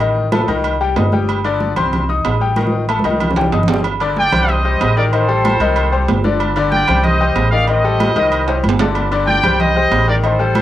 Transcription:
Already playing: A1
0.00 D#3 D#4 D#5, high conga, low agogo
0.16 high conga
0.32 A3 A4 A5, high conga, low timbale, low agogo
0.48 C2 D#3 D#4 D#5, high conga, low agogo
0.64 high conga, low agogo
0.81 G3 G4 G5, high conga
0.96 G1 D#4 D#5 D#6, high conga, low timbale, low agogo
1.12 G3 G4 G5, high conga
1.28 high conga, low agogo
1.44 D3 D4 D5, high conga, low agogo
1.60 high conga, low timbale
1.76 C2 C4 C5 C6, high conga, low conga, low agogo
1.93 high conga, low conga, low agogo
2.09 D#4 D#5 D#6, high conga
2.24 A1, high conga, low timbale, low agogo
2.40 G3 G4 G5, high conga
2.56 D#3 D#4 D#5, high conga, low agogo
2.67 high conga
2.89 A3 A4 A5, low timbale, low agogo
2.99 high conga
3.04 C2 D#3 D#4 D#5, low agogo
3.10 high conga
3.20 low conga, low agogo
3.31 low conga
3.36 G3 G4 G5, high timbale
3.41 low conga
3.52 G1 D#4 D#5 D#6, low timbale, low agogo
3.63 low conga
3.68 G3 G4 G5, low timbale
3.74 low conga
3.84 high conga, low agogo
4.00 D3 D4 D5, high conga, low agogo
4.16 D5 G5, high conga, low timbale
4.32 C2 G3 G4 C5, high conga, low conga, low agogo
4.48 C5 D#5, high conga, low conga, low agogo
4.64 G3 G4 C5, high conga
4.81 A1, high conga, low timbale, low agogo
4.97 D#3 D#4 A#4 D5 D#5, high conga
5.13 D#3 D#4 A4 C5 D#5, high conga, low agogo
5.28 G3 G4 A4, high conga
5.45 high conga, low timbale, low agogo
5.60 C2 D#3 D#4 D#5, high conga, low agogo
5.76 high conga, low agogo
5.92 G3 G4 C5, high conga
6.08 G1, high conga, low timbale, low agogo
6.24 D3 D4 D5, high conga
6.40 high conga, low agogo
6.56 D3 D4 D5, high conga, low agogo
6.72 D5 G5, high conga, low timbale
6.88 C2 G3 G4 C5, high conga, low conga, low agogo
7.04 C5 D#5, high conga, low conga, low agogo
7.20 G3 G4 C5, high conga
7.36 A1, high conga, low timbale, low agogo
7.51 D#3 D#4 D5 D#5 F5, high conga
7.67 D#3 D#4 C5 D#5, high conga, low agogo
7.84 G3 G4 A4, high conga
8.00 high conga, low timbale, low agogo
8.16 C2 D#3 D#4 D#5, high conga, low agogo
8.32 high conga, low agogo
8.48 G3 G4 C5, high conga, high timbale
8.64 G1, high conga, low agogo
8.69 low timbale
8.79 D3 D4 D5, high conga, low timbale
8.95 high conga, low agogo
9.12 D3 D4 D5, high conga, low agogo
9.27 D5 G5, high conga, low timbale
9.43 C2 G3 G4 C5, high conga, low conga, low agogo
9.60 C5 D#5, high conga, low conga, low agogo
9.76 G3 G4 C5, high conga
9.91 A1, high conga, low timbale, low agogo
10.07 D#3 D#4 A#4 D5 D#5, high conga
10.23 D#3 D#4 A4 C5 D#5, high conga, low agogo
10.39 G3 G4 A4, high conga
10.55 high conga, low timbale, low agogo

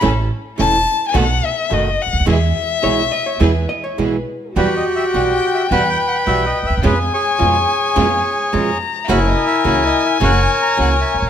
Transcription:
0.01 A1 E3 A3 C#4 E4 A4
0.58 E1 E3 A3 C#4 E4 A4 A5
1.08 G#5
1.14 B1 B2 D#3 A3 B3 D#4 F#4 A4 F#5
1.46 E5
1.70 F#1 B2 D#3 A3 B3 D#4 F#4 A4 D#5
2.02 F#5
2.06 C#2
2.13 D2
2.20 D#2
2.26 E2 B2 E3 G#3 B3 E4 G#4
2.30 E5
2.82 B1 B2 E3 G#3 B3 E4 G#4 C#5
3.12 D#5
3.26 C#5
3.40 E2 B2 E3 G#3 B3 E4 G#4 B4
3.69 D#5
3.84 C#5
3.98 B1 B2 E3 G#3 B3 E4 G#4 B4
4.56 E2 B2 E3 G3 B3 E4 F#4 G4 B4 G5
4.77 D#5
4.96 E5
5.14 B1 B2 E3 G3 B3 E4 F#4 F#5
5.35 G5
5.54 E5
5.71 E2 B2 E3 G3 B3 E4 F#4 B4 F#5
5.90 G5
6.08 F#5
6.27 B1 B2 E3 G3 B3 E4 F#4 E5
6.46 D#5
6.63 D2 E5
6.70 D#2
6.77 E2
6.83 F2 B2 F3 G#3 B3 C#4 F4 G#4 B4 G#5
7.14 G#4 C#5
7.39 F2 B2 F3 G#3 B3 C#4 F4
7.96 F2 B2 F3 G#3 B3 C#4 F4
8.53 F2 B2 F3 G#3 B3 C#4 F4 A#5
9.08 F#1 C#3 E3 A#3 C#4 E4 F#4 A#4 C#5 G#5
9.28 D#5
9.47 E5
9.64 C#2 C#3 E3 A#3 C#4 E4 F#4
9.68 C#5
9.86 D#5
10.05 E5
10.20 F#1 C#3 E3 A#3 C#4 E4 F#4 A#4 C#5
10.25 F#5
10.42 G#5
10.62 A#5
10.77 C#2 C#3 E3 A#3 C#4 E4 F#4
10.81 F#5
11.01 E5
11.14 G#1
11.19 A1 C#5

